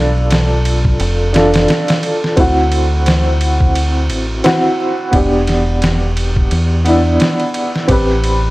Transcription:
Already playing: B1 D4 F4 A4
0.31 snare, ride
0.65 ride
0.85 kick
1.00 F1, ride
1.33 D4 F4, snare, ride
1.37 A4
1.54 snare, ride
1.68 snare, ride
1.88 snare, ride
2.03 ride
2.24 snare
2.36 D2 C4 E4 F#4, kick, ride
2.72 ride
3.06 snare, ride
3.41 ride
3.60 kick
3.75 ride
4.10 A1, ride
4.44 C4 E4 F#4, snare, ride
5.11 E1 B3 D4 G4, kick, ride
5.47 snare, ride
5.82 snare, ride
6.17 ride
6.36 kick
6.51 E2, ride
6.84 B3 D4 E4, ride
7.20 snare, ride
7.40 ride
7.54 ride
7.76 snare
7.88 A1 C4 G4 B4, kick, ride
8.24 ride

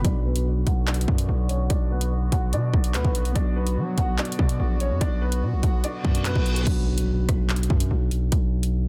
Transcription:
0.01 B1 B2 D3 F#3 B3 F#4 D5, kick, closed hi-hat
0.06 D4 F#4
0.25 B3 B4
0.36 closed hi-hat
0.67 B1 F#4 F#5, kick, closed hi-hat
0.87 D4 D5, clap, closed hi-hat
0.94 closed hi-hat
1.01 closed hi-hat
1.08 F#2, kick
1.18 closed hi-hat
1.29 B1
1.49 C#4 C#5, closed hi-hat
1.70 B1 D4 D5, kick, closed hi-hat
1.91 B3 B4
2.01 closed hi-hat
2.32 B1 F#4 F#5, kick, closed hi-hat
2.53 B2 D4 D5, closed hi-hat
2.74 B1, kick
2.84 closed hi-hat
2.94 D2 B3 B4, clap, closed hi-hat
3.05 B1, kick
3.15 closed hi-hat
3.25 closed hi-hat
3.32 B1 F#3 B3 D4 D5, kick, closed hi-hat
3.37 D4 F#4
3.56 B3 B4
3.67 closed hi-hat
3.77 F#3
3.98 B1 F#4 F#5, kick, closed hi-hat
4.18 D4 D5, clap, closed hi-hat
4.25 closed hi-hat
4.32 closed hi-hat
4.39 B2, kick
4.49 closed hi-hat
4.60 A#1
4.80 C#4 C#5, closed hi-hat
4.91 F#2
5.01 B1 D4 D5, kick, closed hi-hat
5.22 B3 B4
5.32 closed hi-hat
5.42 B2
5.53 B1
5.63 B1 F#4 F#5, kick, closed hi-hat
5.84 D4 D5, closed hi-hat, reverse cymbal
6.03 F#2 B2 F#3 D4 F#4, kick
6.15 closed hi-hat
6.25 B3 B4, clap, closed hi-hat
6.36 B1, kick
6.46 closed hi-hat
6.56 closed hi-hat
6.63 B1 B2 F#3, kick, closed hi-hat, crash, impact
6.68 D4 F#4
6.98 closed hi-hat
7.29 B1, kick, cross-stick, closed hi-hat
7.49 clap, closed hi-hat
7.56 closed hi-hat
7.63 closed hi-hat
7.70 F#2, kick
7.80 closed hi-hat
7.91 B1
8.11 closed hi-hat
8.32 B1, kick, closed hi-hat
8.63 closed hi-hat

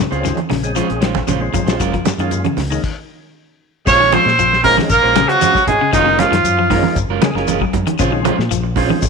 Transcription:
0.00 C#3, snare
0.11 C#2 G#3 C4 C#4 F4 C5, closed hi-hat, shekere
0.23 D#3, muted clean electric guitar stroke, snare, closed hi-hat, high conga, low conga, shekere
0.37 closed hi-hat, high conga
0.50 A#1 C#3, muted clean electric guitar stroke, snare, open hi-hat, low conga, shekere
0.63 G#3 C4 C#4 G#4, muted clean electric guitar stroke, closed hi-hat, shekere
0.75 F3 G#3 C#4 F4 C5, closed hi-hat, high conga, shekere
0.89 A#1, muted clean electric guitar stroke, closed hi-hat
1.01 D#3 G#3 C#4 F4 C5, snare, closed hi-hat, shekere
1.15 kick, snare, high conga, shekere
1.27 A#1 C#3 G#3 C#4 F4 C5, closed hi-hat, high conga, shekere
1.40 G#3 C4 C#4 F4, muted clean electric guitar stroke
1.53 F3, muted clean electric guitar stroke, kick, closed hi-hat, high conga, low conga, shekere
1.66 A#1 C#4 F4 C5, snare, closed hi-hat, shekere
1.79 F#1 F#3 G#3 C#4 F4 A#4, kick, closed hi-hat, high conga, shekere
1.93 F3, muted clean electric guitar stroke, kick, closed hi-hat
2.05 muted clean electric guitar stroke, snare, closed hi-hat, high conga, shekere
2.18 F#2 D#3 G#3 A#3 C#4 F4, closed hi-hat, shekere
2.31 muted clean electric guitar stroke, closed hi-hat, high conga, shekere
2.45 C#3, closed hi-hat, high conga
2.57 C#2, muted clean electric guitar stroke, snare, open hi-hat, low conga, shekere
2.70 D#3 G#3 A#3 C#4 D#4, muted clean electric guitar stroke, shekere
2.84 kick, crash
3.85 A#1 G#3 C4 C#4 F4 C5 C#5, muted clean electric guitar stroke, kick, snare, crash, high conga, shekere
3.90 C#4
4.00 D#3, muted clean electric guitar stroke
4.12 F3 G#3 C4 C#4 F4 C5, closed hi-hat, high conga, shekere
4.25 A#2, muted clean electric guitar stroke, snare
4.38 A#1 F3, closed hi-hat, high conga, shekere
4.51 muted clean electric guitar stroke, snare
4.63 G#3 A#3 C4 C#4 D#4 F4 A#4 C5, kick, open hi-hat, low conga, shekere
4.77 D#3, muted clean electric guitar stroke, snare, high conga
4.89 A#1 A#3 A#4, muted clean electric guitar stroke, kick, closed hi-hat, high conga, shekere
5.02 A#1 G#3 C#4 F4 C5
5.15 C#3 G#3 C4 C#4 G#4, muted clean electric guitar stroke, snare, closed hi-hat, high conga, shekere
5.28 F#3 C#4 F4 F#4 C5, closed hi-hat
5.41 G#3 C#4 F4 C5, muted clean electric guitar stroke, closed hi-hat, high conga, shekere
5.54 muted clean electric guitar stroke, kick, snare
5.66 G#1 G#3 G#4, muted clean electric guitar stroke, kick, closed hi-hat, low conga, shekere
5.81 C#3
5.93 F#1 D#3 G#3 A#3 C#4 D#4 F4 A#4, kick, closed hi-hat, high conga, shekere
6.06 C#3, muted clean electric guitar stroke
6.18 G#3 C#4 F4 A#4, snare, closed hi-hat, high conga, shekere
6.24 F3
6.32 F#2 D#3, muted clean electric guitar stroke, snare, closed hi-hat
6.44 F#2, closed hi-hat, high conga, shekere
6.58 F3, muted clean electric guitar stroke
6.70 D#3 G#3 A#3 C#4 D#4 F4 A#4, kick, open hi-hat, low conga, shekere
6.83 muted clean electric guitar stroke, high conga
6.96 F#1, muted clean electric guitar stroke, kick, closed hi-hat, high conga, shekere
7.09 F#1 G#3 C#4 F4 A#4
7.22 C#3 G#3 A#3 C#4 G#4, muted clean electric guitar stroke, snare, closed hi-hat, high conga, shekere
7.35 F#1 C#4 F4 A#4, muted clean electric guitar stroke, snare
7.47 G#3 C#4 F4 A#4, closed hi-hat, high conga, shekere
7.61 F#3, muted clean electric guitar stroke, kick
7.73 F#2, muted clean electric guitar stroke, kick, closed hi-hat, low conga, shekere
7.87 D#3, muted fingered electric bass stroke, closed hi-hat, high conga
7.99 A#1 C#3 G#3 C4 C#4 F4 C5, kick, closed hi-hat, high conga, shekere
8.12 D#3, muted clean electric guitar stroke
8.24 F3 G#3 C#4 F4 C5, closed hi-hat, high conga, shekere
8.37 A#2, muted clean electric guitar stroke, snare
8.50 A#1 F3, closed hi-hat, high conga, shekere
8.63 muted clean electric guitar stroke
8.76 G#3 C4 C#4 F4 C5, kick, open hi-hat, low conga, shekere
8.90 D#3, muted clean electric guitar stroke, high conga
9.02 A#1, muted clean electric guitar stroke, kick, closed hi-hat, high conga, shekere

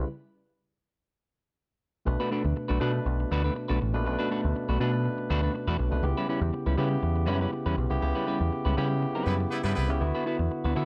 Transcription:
2.05 B1 B2 A3 D4 B4, muted clean electric guitar stroke
2.20 A3 D4 F#4 B4
2.31 A3 D4 F#4 B4
2.45 D2, muted clean electric guitar stroke
2.56 muted clean electric guitar stroke
2.68 B1 A3 D4 F#4 B4
2.80 B2 A3 D4 F#4 B4
2.94 muted clean electric guitar stroke
3.06 B1, muted clean electric guitar stroke
3.20 muted clean electric guitar stroke
3.31 D2 A3 D4 F#4 B4
3.44 A3 D4 F#4 B4
3.55 muted clean electric guitar stroke
3.68 B1 A3 D4 F#4 B4
3.82 A1
3.94 A#1 B2 A3 D4 B4, muted clean electric guitar stroke
4.05 B1 B2 A3 C#4 B4, muted clean electric guitar stroke
4.12 D4
4.19 A3 D4 F#4 B4
4.31 A3 D4 F#4 B4
4.43 D2, muted clean electric guitar stroke
4.56 muted clean electric guitar stroke
4.69 B1 A3 D4 F#4 B4
4.79 B2 A3 D4 F#4 B4
4.94 muted clean electric guitar stroke
5.05 muted clean electric guitar stroke
5.18 muted clean electric guitar stroke
5.30 D2 A3 D4 F#4 B4
5.43 A3 D4 F#4 B4
5.54 muted clean electric guitar stroke
5.68 E2 A3 D4 F#4 B4
5.79 B1, muted clean electric guitar stroke
5.90 C2 B2 A3 D4 B4, muted clean electric guitar stroke
6.02 C#2 C#3 B3 D#4 G4, muted clean electric guitar stroke
6.09 E4
6.17 G3 C#4 E4 B4
6.29 G3 C#4 E4 B4
6.41 E2, muted clean electric guitar stroke
6.53 muted clean electric guitar stroke
6.66 C#2 G3 C#4 E4 B4
6.77 C#3 G3 B3 C#4 E4 G4 B4
6.91 muted clean electric guitar stroke
7.02 E2, muted clean electric guitar stroke
7.16 muted clean electric guitar stroke
7.26 F#2 G3 C#4 E4 B4
7.41 G3 C#4 E4 B4
7.53 muted clean electric guitar stroke
7.66 E2 G3 C#4 E4 B4
7.78 B1
7.90 C2 C#3 B3 E4 G4, muted clean electric guitar stroke
8.01 C#2 C#3 B3 E4 G4, muted clean electric guitar stroke
8.15 G3 C#4 E4 B4
8.27 G3 C#4 E4 B4
8.41 E2, muted clean electric guitar stroke
8.52 muted clean electric guitar stroke
8.65 C#2 G3 C#4 E4 B4
8.77 C#3 G3 B3 C#4 E4 G4 B4
8.90 muted clean electric guitar stroke
9.02 muted clean electric guitar stroke
9.15 G3 C#4 E4 B4
9.26 F#2 G3 B3 C#4 E4 B4
9.40 muted clean electric guitar stroke
9.51 G3 B3 E4 B4, muted clean electric guitar stroke
9.64 G2 G3 B3 C#4 E4 B4
9.75 C2 G3 B3 E4 B4
9.88 C#2 C#3 B3 E4 G4, muted clean electric guitar stroke
10.00 D2 D3 B3 E4 F#4, muted clean electric guitar stroke
10.15 B3 E4 F#4 B4
10.26 B3 E4 F#4 B4
10.39 E2, muted clean electric guitar stroke
10.51 muted clean electric guitar stroke
10.64 D2 B3 E4 F#4 B4
10.75 D3 B3 E4 F#4 A4 B4

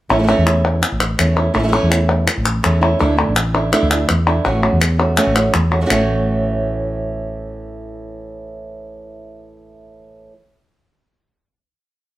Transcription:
0.09 A1 E3 A3 C#4 E4
0.19 E3 A3 C#4 E4
0.23 E3 A3 C#4 E4
0.27 E3 A3 C#4 E4
0.38 E2
0.46 A3 C#4 E4, clap
0.82 muted nylon-string guitar stroke, clap
0.92 A1
1.00 clap
1.18 E2 E3 A3 C#4 E4, clap
1.36 A3 C#4 E4
1.54 A1 E3 A3 C#4 E4
1.59 E3 A3 C#4 E4
1.63 E3 A3 C#4 E4
1.68 E3 A3 C#4 E4
1.72 E3 A3 C#4 E4
1.83 E2
1.90 A3 C#4 E4, clap
2.27 muted nylon-string guitar stroke, clap
2.37 A1
2.46 clap
2.63 E2 E3 A3 C#4 E4, clap
2.81 A3 C#4 E4
2.99 D2 D3 A3 D4 E4
3.17 A3 D4 E4
3.28 A1
3.36 muted nylon-string guitar stroke, clap
3.54 A3 D4 E4
3.72 D3 A3 D4 E4, clap
3.83 D2
3.90 A3 D4 E4, clap
4.08 E2, muted nylon-string guitar stroke, clap
4.27 A3 D4 E4
4.45 A1 E3 A3 C#4 F#4
4.63 A3 C#4 F#4
4.73 E2
4.80 muted nylon-string guitar stroke, clap
4.99 A3 C#4 F#4
5.17 E3 A3 C#4 F#4, clap
5.27 A1
5.35 A3 C#4 F#4, clap
5.54 E2, muted nylon-string guitar stroke, clap
5.71 A3 C#4 F#4, clap
5.81 E3 A3 C#4 F#4
5.86 E3 A3 C#4 F#4
5.90 A1 A2 E3 A3 C#4 F#4, clap

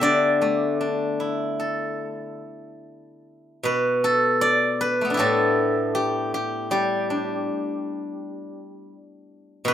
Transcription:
Already playing: G4 A4 B4 E5
0.01 D3 D5
0.42 A3
0.81 D4
1.20 E4
1.60 A4
3.63 B2 B4
4.04 A4
4.41 D5
4.81 B4
5.01 A3 B3
5.10 D4
5.14 E4 G4
5.19 A2 A4
5.95 G4
6.34 G4
6.71 G3 G4
7.10 D4
9.65 B2 B4

